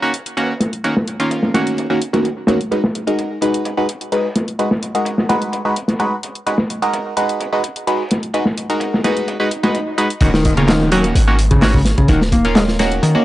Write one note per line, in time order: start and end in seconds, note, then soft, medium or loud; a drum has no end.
0.02 0.12 D#3 medium
0.02 0.12 A#3 medium
0.02 0.12 C#4 medium
0.02 0.12 F#4 loud
0.14 closed hi-hat medium
0.26 closed hi-hat soft
0.37 0.53 D#3 medium
0.37 0.53 A#3 medium
0.37 0.53 C#4 medium
0.37 0.53 F#4 medium
0.37 closed hi-hat soft
0.37 open hi-hat medium
0.60 snare soft
0.60 closed hi-hat medium
0.73 closed hi-hat soft
0.84 0.94 D#3 medium
0.84 0.94 A#3 medium
0.84 0.94 C#4 medium
0.84 0.94 F#4 medium
0.84 closed hi-hat medium
0.84 closed hi-hat soft
0.97 snare soft
1.08 closed hi-hat medium
1.20 1.52 D#3 medium
1.20 1.52 A#3 medium
1.20 1.52 C#4 medium
1.20 1.52 F4 medium
1.20 closed hi-hat soft
1.30 closed hi-hat medium
1.30 closed hi-hat soft
1.43 snare soft
1.54 1.87 D#3 medium
1.54 1.87 A#3 medium
1.54 1.87 C#4 medium
1.54 1.87 F#4 loud
1.54 snare soft
1.54 closed hi-hat medium
1.67 closed hi-hat soft
1.78 closed hi-hat medium
1.78 closed hi-hat soft
1.90 1.99 D#3 medium
1.90 1.99 A#3 medium
1.90 1.99 C#4 medium
1.90 1.99 F#4 medium
2.01 closed hi-hat medium
2.13 2.29 D#3 medium
2.13 2.29 A#3 medium
2.13 2.29 C#4 medium
2.13 2.29 F#4 medium
2.13 snare soft
2.13 closed hi-hat soft
2.24 closed hi-hat medium
2.24 closed hi-hat soft
2.47 2.58 D#3 medium
2.47 2.58 A#3 medium
2.47 2.58 C#4 medium
2.47 2.58 F#4 loud
2.47 snare medium
2.47 closed hi-hat medium
2.61 closed hi-hat soft
2.71 2.82 G#3 medium
2.71 2.82 D#4 medium
2.71 2.82 F#4 medium
2.71 2.82 B4 medium
2.71 closed hi-hat medium
2.71 closed hi-hat soft
2.84 snare medium
2.95 closed hi-hat medium
3.07 3.39 G#3 medium
3.07 3.39 D#4 medium
3.07 3.39 F#4 medium
3.07 3.39 A#4 medium
3.07 closed hi-hat soft
3.19 closed hi-hat soft
3.19 closed hi-hat medium
3.41 3.75 G#3 medium
3.41 3.75 D#4 medium
3.41 3.75 F#4 medium
3.41 3.75 B4 loud
3.41 closed hi-hat medium
3.54 closed hi-hat soft
3.65 closed hi-hat medium
3.65 closed hi-hat soft
3.77 3.87 G#3 medium
3.77 3.87 D#4 medium
3.77 3.87 F#4 medium
3.77 3.87 B4 medium
3.89 closed hi-hat medium
4.01 closed hi-hat soft
4.12 4.28 G#3 medium
4.12 4.28 D#4 medium
4.12 4.28 F#4 medium
4.12 4.28 B4 medium
4.12 closed hi-hat soft
4.12 open hi-hat medium
4.36 snare soft
4.36 closed hi-hat medium
4.48 closed hi-hat soft
4.59 4.69 G#3 medium
4.59 4.69 D#4 medium
4.59 4.69 F#4 medium
4.59 4.69 B4 medium
4.59 closed hi-hat medium
4.59 closed hi-hat soft
4.71 snare soft
4.82 closed hi-hat medium
4.95 5.27 G#3 medium
4.95 5.27 D#4 medium
4.95 5.27 F#4 medium
4.95 5.27 A#4 medium
4.95 closed hi-hat soft
5.05 closed hi-hat medium
5.05 closed hi-hat soft
5.18 snare soft
5.29 5.62 G#3 medium
5.29 5.62 D#4 medium
5.29 5.62 F#4 medium
5.29 5.62 B4 loud
5.29 snare soft
5.29 closed hi-hat medium
5.42 closed hi-hat soft
5.53 closed hi-hat medium
5.53 closed hi-hat soft
5.65 5.75 G#3 medium
5.65 5.75 D#4 medium
5.65 5.74 F#4 medium
5.65 5.75 B4 medium
5.76 closed hi-hat medium
5.88 snare soft
5.88 closed hi-hat soft
5.99 6.16 G#3 medium
5.99 6.16 D#4 medium
5.99 6.16 F#4 medium
5.99 6.16 B4 medium
5.99 closed hi-hat medium
5.99 closed hi-hat soft
6.23 closed hi-hat medium
6.35 closed hi-hat soft
6.46 6.57 G#3 medium
6.46 6.57 D#4 medium
6.46 6.57 F#4 medium
6.46 6.57 B4 medium
6.46 closed hi-hat medium
6.46 closed hi-hat soft
6.58 snare medium
6.70 closed hi-hat medium
6.82 7.14 G#3 medium
6.82 7.14 D#4 medium
6.82 7.14 F#4 medium
6.82 7.14 A#4 medium
6.82 closed hi-hat soft
6.93 closed hi-hat medium
6.93 closed hi-hat soft
7.17 7.50 G#3 medium
7.17 7.50 D#4 medium
7.17 7.50 F#4 medium
7.17 7.50 B4 loud
7.17 closed hi-hat medium
7.29 closed hi-hat soft
7.40 closed hi-hat medium
7.40 closed hi-hat soft
7.52 7.62 G#3 medium
7.52 7.62 D#4 medium
7.52 7.62 F#4 medium
7.52 7.62 B4 medium
7.63 closed hi-hat medium
7.76 closed hi-hat soft
7.87 8.03 G#3 medium
7.87 8.03 D#4 medium
7.87 8.03 F#4 medium
7.87 8.03 B4 medium
7.87 closed hi-hat soft
7.87 open hi-hat medium
8.11 snare soft
8.11 closed hi-hat medium
8.23 closed hi-hat soft
8.34 8.44 G#3 medium
8.34 8.44 D#4 medium
8.34 8.44 F#4 medium
8.34 8.44 B4 medium
8.34 closed hi-hat medium
8.34 closed hi-hat soft
8.45 snare soft
8.58 closed hi-hat medium
8.70 9.02 G#3 medium
8.70 9.02 D#4 medium
8.70 9.02 F#4 medium
8.70 9.02 A#4 medium
8.70 closed hi-hat soft
8.80 closed hi-hat medium
8.80 closed hi-hat soft
8.94 snare soft
9.04 9.37 G#3 medium
9.04 9.37 D#4 medium
9.04 9.37 F#4 medium
9.04 9.37 B4 loud
9.04 snare soft
9.04 closed hi-hat medium
9.17 closed hi-hat soft
9.28 closed hi-hat medium
9.28 closed hi-hat soft
9.28 swell medium
9.40 9.49 G#3 medium
9.40 9.49 D#4 medium
9.40 9.49 F#4 medium
9.40 9.49 B4 medium
9.51 closed hi-hat medium
9.63 9.79 G#3 medium
9.63 9.79 D#4 medium
9.63 9.79 F#4 medium
9.63 9.79 B4 medium
9.63 snare soft
9.63 closed hi-hat soft
9.74 closed hi-hat medium
9.74 closed hi-hat soft
9.98 10.08 G#3 medium
9.98 10.08 D#4 medium
9.98 10.08 F#4 medium
9.98 10.08 B4 loud
9.98 closed hi-hat medium
10.10 closed hi-hat soft
10.21 11.12 D#1 loud
10.21 10.32 D#3 medium
10.21 10.28 D#3 medium
10.21 10.32 A#3 medium
10.21 10.32 C#4 medium
10.21 10.32 F#4 medium
10.21 kick loud
10.21 closed hi-hat medium
10.21 closed hi-hat soft
10.21 downlifter medium
10.34 10.44 D#3 loud
10.34 snare medium
10.45 10.52 D#3 medium
10.45 kick medium
10.45 closed hi-hat medium
10.57 10.68 C#3 loud
10.57 10.89 D#3 medium
10.57 10.89 A#3 medium
10.57 10.89 C#4 medium
10.57 10.89 F4 medium
10.57 closed hi-hat soft
10.68 10.91 D#3 medium
10.68 snare loud
10.68 clap loud
10.68 closed hi-hat medium
10.68 closed hi-hat soft
10.92 11.25 D#3 loud
10.92 11.03 F#3 medium
10.92 11.25 A#3 medium
10.92 11.25 C#4 medium
10.92 11.25 F#4 loud
10.92 closed hi-hat medium
11.04 closed hi-hat soft
11.15 11.94 G#1 loud
11.15 closed hi-hat soft
11.15 closed hi-hat medium
11.27 11.37 D#3 medium
11.27 11.37 A#3 medium
11.27 11.37 C#4 medium
11.27 11.37 F#4 loud
11.39 closed hi-hat medium
11.51 11.62 C#3 medium
11.51 kick medium
11.51 closed hi-hat soft
11.62 11.78 D#3 medium
11.62 11.78 A#3 medium
11.62 11.78 C#4 medium
11.62 11.78 F#4 medium
11.62 snare loud
11.62 clap loud
11.62 closed hi-hat soft
11.62 open hi-hat medium
11.74 11.80 C#3 medium
11.74 kick loud
11.85 snare soft
11.85 closed hi-hat medium
11.98 12.08 C#3 medium
11.98 kick loud
11.98 closed hi-hat soft
12.08 12.99 D#1 loud
12.08 12.20 D#3 loud
12.08 12.19 D#3 medium
12.08 12.19 A#3 medium
12.08 12.19 C#4 medium
12.08 12.19 F#4 medium
12.08 kick loud
12.08 closed hi-hat medium
12.08 closed hi-hat soft
12.22 snare soft
12.32 12.43 A#3 medium
12.32 kick loud
12.32 closed hi-hat medium
12.45 12.77 D#3 medium
12.45 12.77 A#3 medium
12.45 12.77 C#4 medium
12.45 12.77 F4 medium
12.45 closed hi-hat soft
12.55 12.62 G#3 loud
12.55 snare loud
12.55 clap loud
12.55 closed hi-hat medium
12.55 closed hi-hat soft
12.68 snare soft
12.79 13.12 D#3 loud
12.79 13.12 A#3 medium
12.79 13.12 C#4 medium
12.79 13.12 F#4 loud
12.79 snare soft
12.79 closed hi-hat medium
12.92 closed hi-hat soft
13.03 13.14 D#3 loud
13.03 closed hi-hat soft
13.03 closed hi-hat medium
13.15 13.24 D#3 medium
13.15 13.24 A#3 medium
13.15 13.25 A#3 medium
13.15 13.24 C#4 medium
13.15 13.24 F#4 loud